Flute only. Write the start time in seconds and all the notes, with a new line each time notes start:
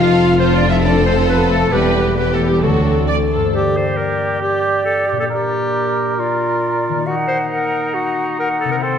3.54 D5
3.98 D5
4.42 D5
5.30 D5
6.18 D5
7.07 F#5
7.51 F#5
7.92 F#5
8.39 F#5
8.83 G5